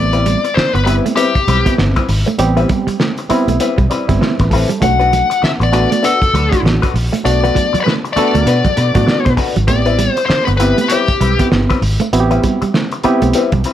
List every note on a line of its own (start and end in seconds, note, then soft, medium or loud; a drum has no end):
0.00 0.34 A1 loud
0.00 0.43 G3 medium
0.00 0.43 B3 medium
0.00 0.43 C4 medium
0.00 0.43 E4 medium
0.00 0.58 D5 loud
0.13 0.25 G3 medium
0.13 0.26 C4 medium
0.13 0.26 E4 medium
0.13 0.26 B4 medium
0.13 closed hi-hat soft
0.26 0.38 G3 medium
0.26 muted hollow-body jazz guitar stroke soft
0.26 closed hi-hat medium
0.44 muted clean electric guitar stroke soft
0.44 muted hollow-body jazz guitar stroke medium
0.44 closed hi-hat soft
0.54 0.73 C5 loud
0.54 muted hollow-body jazz guitar stroke soft
0.54 muted fingered electric bass stroke medium
0.54 snare loud
0.73 0.99 G1 loud
0.73 0.82 B3 medium
0.73 0.84 B4 medium
0.73 muted hollow-body jazz guitar stroke medium
0.73 closed hi-hat soft
0.85 1.25 G3 medium
0.85 1.06 G3 medium
0.85 1.25 B3 medium
0.85 1.25 C4 medium
0.85 1.05 C4 medium
0.85 1.25 E4 medium
0.85 1.05 E4 medium
0.85 0.93 B4 loud
0.85 1.05 B4 medium
0.85 muted clean electric guitar stroke soft
0.85 closed hi-hat medium
1.06 1.13 A3 medium
1.06 muted hollow-body jazz guitar stroke soft
1.06 closed hi-hat medium
1.16 1.36 G3 medium
1.16 1.35 C4 medium
1.16 1.35 E4 loud
1.16 1.73 G4 medium
1.16 1.34 B4 medium
1.16 closed hi-hat medium
1.35 muted hollow-body jazz guitar stroke soft
1.35 muted fingered electric bass stroke soft
1.35 kick medium
1.35 closed hi-hat soft
1.47 1.62 B1 medium
1.47 1.63 G3 medium
1.47 1.60 G3 medium
1.47 1.63 C4 medium
1.47 1.63 E4 medium
1.47 1.64 B4 medium
1.47 closed hi-hat medium
1.65 2.01 G3 medium
1.65 2.01 B3 medium
1.65 2.02 C4 medium
1.65 2.02 E4 medium
1.65 muted hollow-body jazz guitar stroke soft
1.65 kick loud
1.65 snare soft
1.65 closed hi-hat medium
1.78 1.93 G1 medium
1.78 1.90 B3 medium
1.78 muted hollow-body jazz guitar stroke soft
1.78 snare loud
1.96 2.08 G3 medium
1.96 2.08 C4 medium
1.96 2.09 E4 medium
1.96 2.09 B4 medium
1.96 kick medium
1.96 snare soft
1.96 closed hi-hat soft
2.09 2.23 G#1 medium
2.09 muted hollow-body jazz guitar stroke soft
2.09 muted clean electric guitar stroke soft
2.09 open hi-hat medium
2.26 2.35 A3 medium
2.26 muted hollow-body jazz guitar stroke soft
2.26 closed hi-hat soft
2.38 2.63 A1 loud
2.38 2.86 G3 loud
2.38 2.86 B3 medium
2.38 2.87 C4 loud
2.38 2.87 G4 loud
2.38 muted hollow-body jazz guitar stroke soft
2.38 closed hi-hat medium
2.57 2.69 G3 medium
2.57 2.69 C4 medium
2.57 2.69 E4 medium
2.57 2.69 B4 medium
2.57 muted clean electric guitar stroke soft
2.57 closed hi-hat soft
2.69 2.81 G3 medium
2.69 muted hollow-body jazz guitar stroke soft
2.69 kick medium
2.69 closed hi-hat medium
2.87 2.95 G3 medium
2.87 muted fingered electric bass stroke medium
2.87 muted hollow-body jazz guitar stroke soft
2.87 closed hi-hat soft
3.00 3.11 A3 loud
3.00 muted hollow-body jazz guitar stroke soft
3.00 snare loud
3.18 muted hollow-body jazz guitar stroke soft
3.18 closed hi-hat soft
3.29 3.68 G3 loud
3.29 3.49 G3 medium
3.29 3.68 B3 medium
3.29 3.69 C4 medium
3.29 3.48 C4 medium
3.29 3.69 E4 loud
3.29 3.48 E4 medium
3.29 3.48 B4 medium
3.29 muted fingered electric bass stroke soft
3.29 muted clean electric guitar stroke soft
3.29 closed hi-hat medium
3.48 3.57 B1 medium
3.48 3.56 A3 medium
3.48 muted hollow-body jazz guitar stroke soft
3.48 closed hi-hat medium
3.60 3.79 G3 medium
3.60 3.78 C4 medium
3.60 3.77 E4 medium
3.60 3.77 B4 loud
3.60 closed hi-hat medium
3.78 3.88 B1 loud
3.78 3.86 G3 medium
3.78 muted hollow-body jazz guitar stroke medium
3.78 kick loud
3.78 closed hi-hat soft
3.90 4.06 G3 medium
3.90 4.06 C4 medium
3.90 4.06 E4 medium
3.90 4.06 B4 medium
3.90 4.18 D5 medium
3.90 muted clean electric guitar stroke soft
3.90 closed hi-hat medium
4.08 4.18 G1 medium
4.08 4.44 G3 medium
4.08 4.17 G3 medium
4.08 4.44 B3 medium
4.08 4.44 C4 medium
4.08 4.45 E4 medium
4.08 kick loud
4.08 snare soft
4.08 closed hi-hat medium
4.20 4.33 A3 medium
4.20 4.37 C5 medium
4.20 muted hollow-body jazz guitar stroke medium
4.20 snare loud
4.39 4.64 A1 loud
4.39 4.50 B4 medium
4.39 muted hollow-body jazz guitar stroke soft
4.39 kick loud
4.39 snare soft
4.39 closed hi-hat soft
4.50 4.71 G3 medium
4.50 4.70 C4 medium
4.50 4.69 E4 medium
4.50 4.79 A4 medium
4.50 4.69 B4 loud
4.50 muted clean electric guitar stroke soft
4.50 kick loud
4.50 open hi-hat medium
4.69 4.77 G3 medium
4.69 muted hollow-body jazz guitar stroke medium
4.69 closed hi-hat medium
4.80 5.21 B1 loud
4.80 5.29 A3 medium
4.80 4.94 A3 medium
4.80 5.29 C#4 medium
4.80 5.29 D4 medium
4.80 5.29 F#4 medium
4.80 5.44 F#5 loud
4.80 muted hollow-body jazz guitar stroke soft
4.80 kick loud
4.80 closed hi-hat medium
5.00 5.11 A3 medium
5.00 5.11 D4 medium
5.00 5.11 F#4 medium
5.00 5.12 B4 medium
5.00 closed hi-hat soft
5.12 5.25 F#3 medium
5.12 muted hollow-body jazz guitar stroke soft
5.12 closed hi-hat medium
5.30 muted hollow-body jazz guitar stroke soft
5.30 muted clean electric guitar stroke soft
5.30 closed hi-hat medium
5.42 5.49 E5 loud
5.42 muted hollow-body jazz guitar stroke soft
5.42 muted fingered electric bass stroke soft
5.42 snare loud
5.60 5.85 A1 loud
5.60 5.69 B3 medium
5.60 5.73 D5 medium
5.60 muted hollow-body jazz guitar stroke medium
5.60 closed hi-hat soft
5.72 6.11 A3 medium
5.72 5.92 A3 medium
5.72 6.11 B3 medium
5.72 6.11 D4 medium
5.72 5.91 D4 medium
5.72 6.11 F#4 loud
5.72 5.91 F#4 loud
5.72 5.90 B4 loud
5.72 6.05 D5 medium
5.72 muted clean electric guitar stroke soft
5.72 closed hi-hat medium
5.92 6.00 A3 medium
5.92 closed hi-hat medium
6.03 6.22 A3 loud
6.03 6.21 D4 loud
6.03 6.21 F#4 loud
6.03 6.61 A4 medium
6.03 6.20 B4 loud
6.03 closed hi-hat loud
6.22 muted hollow-body jazz guitar stroke soft
6.22 muted fingered electric bass stroke soft
6.22 kick loud
6.22 closed hi-hat soft
6.34 6.48 D2 loud
6.34 6.46 F#3 medium
6.34 6.49 A3 medium
6.34 6.50 D4 medium
6.34 6.50 F#4 medium
6.34 6.50 B4 medium
6.34 closed hi-hat medium
6.51 6.87 A3 medium
6.51 6.88 C#4 medium
6.51 6.88 D4 medium
6.51 6.88 F#4 medium
6.51 muted hollow-body jazz guitar stroke soft
6.51 kick loud
6.51 snare soft
6.51 closed hi-hat medium
6.63 6.78 A1 loud
6.63 6.77 B3 medium
6.63 muted hollow-body jazz guitar stroke soft
6.63 snare loud
6.82 6.93 A3 medium
6.82 6.94 D4 medium
6.82 6.94 F#4 medium
6.82 6.95 B4 loud
6.82 kick loud
6.82 snare soft
6.82 closed hi-hat soft
6.94 7.09 A#1 medium
6.94 muted hollow-body jazz guitar stroke soft
6.94 muted clean electric guitar stroke medium
6.94 open hi-hat medium
7.12 7.21 A3 medium
7.12 muted hollow-body jazz guitar stroke medium
7.12 closed hi-hat medium
7.24 7.49 B1 loud
7.24 7.72 A3 medium
7.24 7.73 B3 medium
7.24 7.73 D4 medium
7.24 7.73 F#4 loud
7.24 7.77 D5 loud
7.24 muted hollow-body jazz guitar stroke soft
7.24 closed hi-hat medium
7.43 7.54 A3 medium
7.43 7.55 D4 medium
7.43 7.55 F#4 medium
7.43 7.55 B4 medium
7.43 muted clean electric guitar stroke medium
7.43 closed hi-hat soft
7.55 7.67 F#3 medium
7.55 muted hollow-body jazz guitar stroke soft
7.55 kick medium
7.55 closed hi-hat medium
7.73 7.82 F#3 medium
7.73 muted hollow-body jazz guitar stroke soft
7.73 muted fingered electric bass stroke medium
7.73 closed hi-hat medium
7.80 7.92 B4 medium
7.80 7.83 D5 medium
7.86 7.98 A3 loud
7.86 muted hollow-body jazz guitar stroke soft
7.86 snare loud
8.04 muted hollow-body jazz guitar stroke soft
8.04 closed hi-hat soft
8.13 8.55 A3 medium
8.13 8.36 A3 medium
8.13 8.58 A3 loud
8.13 8.55 B3 medium
8.13 8.55 D4 medium
8.13 8.58 F#4 loud
8.13 8.55 F#4 medium
8.13 8.58 A4 loud
8.13 9.33 D5 loud
8.13 muted fingered electric bass stroke soft
8.13 closed hi-hat medium
8.17 8.34 D4 medium
8.17 8.58 D4 loud
8.17 8.34 F#4 medium
8.17 8.33 B4 loud
8.17 muted clean electric guitar stroke soft
8.34 8.44 D2 medium
8.34 8.43 A3 medium
8.34 muted hollow-body jazz guitar stroke soft
8.34 closed hi-hat soft
8.46 8.61 B2 loud
8.46 8.65 A3 medium
8.46 8.65 D4 medium
8.46 8.65 F#4 medium
8.46 8.64 B4 loud
8.46 closed hi-hat medium
8.65 8.73 F#3 medium
8.65 kick loud
8.65 closed hi-hat soft
8.76 8.92 B2 loud
8.76 8.92 A3 medium
8.76 8.92 D4 medium
8.76 8.93 F#4 medium
8.76 8.93 B4 medium
8.76 muted clean electric guitar stroke soft
8.76 closed hi-hat medium
8.94 9.05 A2 medium
8.94 9.04 F#3 medium
8.94 9.31 A3 medium
8.94 9.31 B3 medium
8.94 9.31 D4 medium
8.94 9.31 F#4 medium
8.94 muted hollow-body jazz guitar stroke soft
8.94 kick loud
8.94 snare soft
8.94 closed hi-hat medium
9.06 9.20 A3 medium
9.06 muted hollow-body jazz guitar stroke soft
9.06 snare loud
9.25 9.36 B2 loud
9.25 muted hollow-body jazz guitar stroke soft
9.25 kick loud
9.25 snare soft
9.25 closed hi-hat soft
9.37 9.57 A3 medium
9.37 9.56 D4 loud
9.37 9.56 F#4 loud
9.37 9.55 B4 loud
9.37 muted clean electric guitar stroke soft
9.37 kick loud
9.37 open hi-hat medium
9.56 9.68 G#1 medium
9.56 9.65 F#3 medium
9.56 muted hollow-body jazz guitar stroke soft
9.56 closed hi-hat medium
9.67 10.07 A1 loud
9.67 9.80 A3 medium
9.67 10.16 B3 medium
9.67 10.16 C4 medium
9.67 10.16 E4 medium
9.67 10.16 G4 medium
9.67 10.12 D5 loud
9.67 muted hollow-body jazz guitar stroke soft
9.67 kick loud
9.67 closed hi-hat medium
9.86 9.97 G3 medium
9.86 9.98 C4 medium
9.86 9.98 E4 medium
9.86 9.98 B4 medium
9.86 closed hi-hat soft
9.99 10.11 G3 medium
9.99 muted hollow-body jazz guitar stroke soft
9.99 closed hi-hat medium
10.12 10.25 C5 loud
10.17 muted clean electric guitar stroke soft
10.17 muted hollow-body jazz guitar stroke soft
10.17 closed hi-hat soft
10.26 10.45 C5 loud
10.26 muted hollow-body jazz guitar stroke soft
10.26 muted fingered electric bass stroke soft
10.26 snare loud
10.45 10.72 G1 medium
10.45 10.55 B3 medium
10.45 10.50 B4 medium
10.45 muted hollow-body jazz guitar stroke soft
10.45 closed hi-hat soft
10.57 10.79 G3 medium
10.57 10.99 B3 medium
10.57 10.99 C4 medium
10.57 10.78 C4 medium
10.57 10.99 E4 medium
10.57 10.78 E4 loud
10.57 10.99 G4 loud
10.57 10.90 B4 loud
10.57 10.78 B4 medium
10.57 muted clean electric guitar stroke soft
10.57 closed hi-hat medium
10.78 10.86 A3 medium
10.78 closed hi-hat medium
10.88 11.10 G3 medium
10.88 11.09 C4 medium
10.88 11.46 G4 medium
10.88 closed hi-hat medium
10.92 11.09 E4 loud
10.92 11.08 B4 loud
11.08 muted fingered electric bass stroke soft
11.08 muted hollow-body jazz guitar stroke soft
11.08 kick loud
11.08 closed hi-hat soft
11.21 11.35 B1 loud
11.21 11.33 G3 medium
11.21 11.36 G3 medium
11.21 11.37 C4 medium
11.21 11.37 E4 medium
11.21 11.37 B4 medium
11.21 closed hi-hat medium
11.39 11.75 B3 medium
11.39 11.75 C4 medium
11.39 11.76 E4 medium
11.39 11.76 G4 medium
11.39 muted hollow-body jazz guitar stroke soft
11.39 kick loud
11.39 snare soft
11.39 closed hi-hat medium
11.52 11.66 G1 loud
11.52 11.63 B3 medium
11.52 muted hollow-body jazz guitar stroke soft
11.52 snare loud
11.70 11.81 G3 medium
11.70 11.81 C4 medium
11.70 11.82 E4 medium
11.70 11.82 B4 medium
11.70 kick medium
11.70 snare soft
11.70 closed hi-hat soft
11.82 11.96 G#1 medium
11.82 muted hollow-body jazz guitar stroke soft
11.82 muted clean electric guitar stroke soft
11.82 open hi-hat medium
12.00 12.08 A3 medium
12.00 muted hollow-body jazz guitar stroke soft
12.00 closed hi-hat medium
12.13 12.37 A1 loud
12.13 12.60 B3 loud
12.13 12.61 C4 loud
12.13 12.61 E4 loud
12.13 12.21 F#4 medium
12.13 muted hollow-body jazz guitar stroke soft
12.13 closed hi-hat medium
12.20 12.64 G4 loud
12.31 12.42 G3 medium
12.31 12.43 C4 medium
12.31 12.43 E4 medium
12.31 12.43 B4 medium
12.31 muted clean electric guitar stroke soft
12.31 closed hi-hat soft
12.43 12.55 G3 medium
12.43 muted hollow-body jazz guitar stroke soft
12.43 kick medium
12.43 closed hi-hat medium
12.62 12.70 G3 medium
12.62 muted hollow-body jazz guitar stroke soft
12.62 muted fingered electric bass stroke soft
12.62 closed hi-hat soft
12.74 12.86 A3 medium
12.74 muted hollow-body jazz guitar stroke soft
12.74 snare loud
12.92 muted hollow-body jazz guitar stroke medium
12.92 closed hi-hat soft
13.04 13.23 G3 medium
13.04 13.43 B3 loud
13.04 13.43 C4 loud
13.04 13.23 C4 medium
13.04 13.23 E4 loud
13.04 13.43 E4 loud
13.04 13.43 G4 loud
13.04 13.22 B4 loud
13.04 muted fingered electric bass stroke soft
13.04 muted clean electric guitar stroke soft
13.04 closed hi-hat medium
13.22 13.32 B1 medium
13.22 13.30 A3 medium
13.22 muted hollow-body jazz guitar stroke soft
13.22 closed hi-hat medium
13.33 13.54 G3 medium
13.33 13.53 C4 medium
13.33 13.52 E4 loud
13.33 13.52 B4 medium
13.33 closed hi-hat medium
13.52 13.62 B1 medium
13.52 13.61 G3 medium
13.52 muted hollow-body jazz guitar stroke soft
13.52 kick loud
13.52 closed hi-hat soft
13.64 13.73 G3 medium
13.64 13.73 C4 medium
13.64 13.73 E4 medium
13.64 13.73 B4 medium
13.64 muted clean electric guitar stroke soft
13.64 closed hi-hat medium